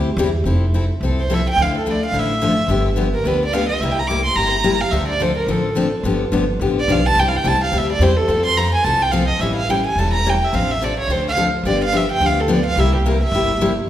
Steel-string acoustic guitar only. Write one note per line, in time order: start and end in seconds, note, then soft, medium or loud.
0.18 0.28 C3 medium
0.18 0.29 G3 loud
0.18 0.29 C4 loud
0.18 0.29 E4 loud
0.18 0.29 G4 loud
0.45 0.64 F3 medium
0.45 0.64 C4 medium
0.45 0.65 E4 medium
0.45 0.65 A4 medium
0.74 0.84 F3 medium
0.74 0.84 C4 medium
0.74 0.84 E4 medium
0.74 0.85 A4 medium
1.03 1.21 F3 medium
1.03 1.21 C4 medium
1.03 1.21 E4 medium
1.03 1.21 A4 medium
1.30 1.40 F3 medium
1.30 1.40 C4 medium
1.30 1.40 E4 loud
1.30 1.41 A4 medium
1.58 1.76 D3 medium
1.58 1.76 F3 medium
1.58 1.76 A3 medium
1.58 1.77 E4 medium
1.86 1.96 D3 medium
1.86 1.96 F3 medium
1.86 1.97 A3 medium
1.86 1.96 E4 medium
2.14 2.32 D3 medium
2.14 2.32 F3 medium
2.14 2.32 A3 medium
2.14 2.33 E4 medium
2.42 2.52 D3 loud
2.42 2.52 F3 loud
2.42 2.52 A3 medium
2.42 2.52 E4 medium
2.69 2.88 D3 medium
2.69 2.88 F3 medium
2.69 2.88 B3 medium
2.69 2.88 D4 medium
2.69 2.89 G4 medium
2.96 3.07 D3 medium
2.96 3.07 F3 medium
2.96 3.07 B3 medium
2.96 3.08 D4 medium
2.96 3.08 G4 medium
3.25 3.44 D3 medium
3.25 3.44 F3 medium
3.25 3.44 B3 medium
3.25 3.45 D4 medium
3.25 3.45 G4 medium
3.53 3.63 D3 loud
3.53 3.64 F3 medium
3.53 3.64 B3 loud
3.53 3.64 D4 loud
3.53 3.64 G4 loud
3.82 4.00 C3 medium
3.82 4.00 G3 medium
3.82 4.01 A#3 medium
3.82 4.01 E4 medium
3.82 4.01 G4 medium
4.10 4.20 C3 medium
4.10 4.20 G3 medium
4.10 4.20 A#3 medium
4.10 4.20 E4 loud
4.10 4.20 G4 medium
4.37 4.55 C3 medium
4.37 4.56 G3 medium
4.37 4.56 A#3 medium
4.37 4.56 E4 medium
4.37 4.56 G4 medium
4.64 4.75 C3 loud
4.64 4.75 G3 loud
4.64 4.75 A#3 medium
4.64 4.75 E4 loud
4.64 4.75 G4 loud
4.92 5.11 D3 medium
4.92 5.12 F3 medium
4.92 5.12 C4 medium
4.92 5.12 D4 medium
4.92 5.12 A4 medium
5.20 5.31 D3 medium
5.20 5.31 F3 medium
5.20 5.31 C4 medium
5.20 5.31 D4 medium
5.20 5.32 A4 loud
5.48 5.67 D3 medium
5.48 5.67 F3 medium
5.48 5.67 C4 medium
5.48 5.68 D4 medium
5.48 5.68 A4 medium
5.75 5.86 D3 medium
5.75 5.87 F3 medium
5.75 5.87 C4 loud
5.75 5.87 D4 loud
5.75 5.87 A4 loud
6.04 6.23 D3 medium
6.04 6.24 F3 medium
6.04 6.24 B3 medium
6.04 6.24 D4 medium
6.04 6.24 G4 medium
6.32 6.43 D3 medium
6.32 6.43 F3 medium
6.32 6.43 B3 medium
6.32 6.43 D4 medium
6.32 6.44 G4 medium
6.61 6.80 D3 medium
6.61 6.80 F3 medium
6.61 6.80 B3 medium
6.61 6.80 D4 medium
6.61 6.80 G4 medium
6.88 6.99 D3 medium
6.88 6.99 F3 loud
6.88 7.00 B3 loud
6.88 7.00 D4 loud
6.88 7.00 G4 loud
7.17 7.36 C3 medium
7.17 7.36 G3 medium
7.17 7.36 C4 medium
7.17 7.37 E4 medium
7.17 7.37 G4 medium
7.44 7.55 C3 medium
7.44 7.55 G3 medium
7.44 7.55 C4 medium
7.44 7.55 E4 loud
7.44 7.56 G4 loud
7.72 7.91 C3 medium
7.72 7.91 G3 medium
7.72 7.91 C4 medium
7.72 7.92 E4 medium
7.72 7.92 G4 medium
8.01 8.11 C3 loud
8.01 8.12 G3 loud
8.01 8.11 C4 medium
8.01 8.12 E4 loud
8.01 8.12 G4 loud
8.28 8.47 F3 medium
8.28 8.47 C4 medium
8.28 8.48 F4 medium
8.28 8.48 A4 medium
8.57 8.67 F3 medium
8.57 8.67 C4 medium
8.57 8.68 F4 loud
8.57 8.68 A4 loud
8.85 9.04 F3 medium
8.85 9.04 C4 medium
8.85 9.04 F4 medium
8.85 9.04 A4 medium
9.12 9.23 F3 loud
9.12 9.23 C4 loud
9.12 9.23 F4 loud
9.12 9.23 A4 loud
9.41 9.60 E3 medium
9.41 9.60 G3 medium
9.41 9.60 C#4 medium
9.41 9.60 E4 medium
9.41 9.60 A4 medium
9.69 9.79 E3 medium
9.69 9.80 G3 medium
9.69 9.80 C#4 medium
9.69 9.80 E4 medium
9.69 9.80 A4 medium
9.98 10.16 E3 medium
9.98 10.16 G3 medium
9.98 10.16 C#4 medium
9.98 10.17 E4 medium
9.98 10.17 A4 medium
10.25 10.35 E3 medium
10.25 10.36 G3 medium
10.25 10.36 C#4 medium
10.25 10.36 E4 loud
10.25 10.36 A4 medium
10.53 10.72 C3 medium
10.53 10.72 F3 medium
10.53 10.72 C4 medium
10.53 10.72 D4 medium
10.53 10.72 A4 medium
10.82 10.92 C3 medium
10.82 10.92 F3 medium
10.82 10.92 C4 medium
10.82 10.92 D4 medium
10.82 10.92 A4 medium
11.10 11.28 C3 medium
11.10 11.28 F3 medium
11.10 11.28 C4 medium
11.10 11.28 D4 medium
11.10 11.29 A4 medium
11.36 11.47 C3 medium
11.36 11.47 F3 loud
11.36 11.47 C4 medium
11.36 11.48 D4 loud
11.36 11.48 A4 loud
11.65 11.84 D3 medium
11.65 11.84 F3 medium
11.65 11.84 B3 medium
11.65 11.84 D4 medium
11.65 11.84 G4 medium
11.92 12.03 D3 medium
11.92 12.03 F3 medium
11.92 12.03 B3 medium
11.92 12.04 D4 medium
11.92 12.04 G4 medium
12.21 12.40 D3 medium
12.21 12.40 F3 medium
12.21 12.40 B3 medium
12.21 12.40 D4 medium
12.21 12.40 G4 medium
12.48 12.59 D3 medium
12.48 12.59 F3 loud
12.48 12.59 B3 loud
12.48 12.59 D4 loud
12.48 12.60 G4 loud
12.77 12.96 C3 medium
12.77 12.96 G3 medium
12.77 12.96 A#3 medium
12.77 12.96 E4 medium
12.77 12.96 G4 medium
13.06 13.16 C3 medium
13.06 13.16 G3 medium
13.06 13.16 A#3 medium
13.06 13.16 E4 medium
13.06 13.16 G4 loud
13.34 13.52 C3 medium
13.34 13.52 G3 medium
13.34 13.52 A#3 medium
13.34 13.53 E4 medium
13.34 13.53 G4 medium
13.61 13.71 C3 loud
13.61 13.72 G3 medium
13.61 13.72 A#3 loud
13.61 13.72 E4 loud
13.61 13.72 G4 loud